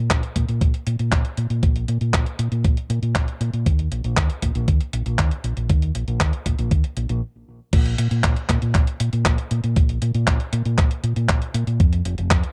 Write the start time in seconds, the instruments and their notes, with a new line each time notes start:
0.10 fingered electric bass A#1, kick, clap, closed hi-hat
0.23 closed hi-hat
0.36 fingered electric bass A#2, kick, closed hi-hat
0.49 fingered electric bass A#2, closed hi-hat
0.61 fingered electric bass A#1, kick, closed hi-hat
0.74 closed hi-hat
0.87 fingered electric bass A#2, closed hi-hat
0.99 fingered electric bass A#2, closed hi-hat
1.12 fingered electric bass A#1, kick, clap, closed hi-hat
1.25 closed hi-hat
1.37 fingered electric bass A#2, closed hi-hat
1.50 fingered electric bass A#2, closed hi-hat
1.63 fingered electric bass A#1, kick, closed hi-hat
1.76 closed hi-hat
1.88 fingered electric bass A#2, closed hi-hat
2.01 fingered electric bass A#2, closed hi-hat
2.14 fingered electric bass A#1, kick, clap, closed hi-hat
2.26 closed hi-hat
2.39 fingered electric bass A#2, closed hi-hat
2.52 fingered electric bass A#2, closed hi-hat
2.64 fingered electric bass A#1, kick, closed hi-hat
2.77 closed hi-hat
2.90 fingered electric bass A#2, closed hi-hat
3.02 fingered electric bass A#2, closed hi-hat
3.15 fingered electric bass A#1, kick, clap, closed hi-hat
3.28 closed hi-hat
3.41 fingered electric bass A#2, closed hi-hat
3.53 fingered electric bass A#2, closed hi-hat
3.66 fingered electric bass D#2, kick, closed hi-hat
3.79 closed hi-hat
3.91 fingered electric bass A#1, closed hi-hat
4.04 fingered electric bass A#1, closed hi-hat
4.17 fingered electric bass D#2, kick, clap, closed hi-hat
4.30 closed hi-hat
4.42 fingered electric bass A#1, kick, closed hi-hat
4.55 fingered electric bass A#1, closed hi-hat
4.68 fingered electric bass D#2, kick, closed hi-hat
4.81 closed hi-hat
4.93 fingered electric bass A#1, closed hi-hat
5.06 fingered electric bass A#1, closed hi-hat
5.19 fingered electric bass D#2, kick, clap, closed hi-hat
5.31 closed hi-hat
5.44 fingered electric bass A#1, closed hi-hat
5.57 fingered electric bass A#1, closed hi-hat
5.70 fingered electric bass D#2, kick, closed hi-hat
5.82 closed hi-hat
5.95 fingered electric bass A#1, closed hi-hat
6.08 fingered electric bass A#1, closed hi-hat
6.20 fingered electric bass D#2, kick, clap, closed hi-hat
6.33 closed hi-hat
6.46 fingered electric bass A#1, kick, closed hi-hat
6.59 fingered electric bass A#1, closed hi-hat
6.71 fingered electric bass D#2, kick, closed hi-hat
6.84 closed hi-hat
6.97 fingered electric bass A#1, closed hi-hat
7.09 fingered electric bass A#1, closed hi-hat
7.73 fingered electric bass A#1, kick, closed hi-hat, crash
7.86 closed hi-hat
7.98 fingered electric bass A#2, closed hi-hat
8.11 fingered electric bass A#2, closed hi-hat
8.24 fingered electric bass A#1, kick, clap, closed hi-hat
8.36 closed hi-hat
8.49 fingered electric bass A#2, kick, clap, closed hi-hat
8.62 fingered electric bass A#2, closed hi-hat
8.75 fingered electric bass A#1, kick, clap, closed hi-hat
8.87 closed hi-hat
9.00 fingered electric bass A#2, closed hi-hat
9.13 fingered electric bass A#2, closed hi-hat
9.25 fingered electric bass A#1, kick, clap, closed hi-hat
9.38 closed hi-hat
9.51 fingered electric bass A#2, closed hi-hat
9.64 fingered electric bass A#2, closed hi-hat
9.76 fingered electric bass A#1, kick, closed hi-hat
9.89 closed hi-hat
10.02 fingered electric bass A#2, closed hi-hat
10.15 fingered electric bass A#2, closed hi-hat
10.27 fingered electric bass A#1, kick, clap, closed hi-hat
10.40 closed hi-hat
10.53 fingered electric bass A#2, closed hi-hat
10.65 fingered electric bass A#2, closed hi-hat
10.78 fingered electric bass A#1, kick, clap, closed hi-hat
10.91 closed hi-hat
11.04 fingered electric bass A#2, closed hi-hat
11.16 fingered electric bass A#2, closed hi-hat
11.29 fingered electric bass A#1, kick, clap, closed hi-hat
11.42 closed hi-hat
11.54 fingered electric bass A#2, closed hi-hat
11.67 fingered electric bass A#2, closed hi-hat
11.80 fingered electric bass F2, kick, closed hi-hat
11.93 closed hi-hat
12.05 fingered electric bass F1, closed hi-hat
12.18 fingered electric bass F1, closed hi-hat
12.31 fingered electric bass F2, kick, clap, closed hi-hat
12.43 closed hi-hat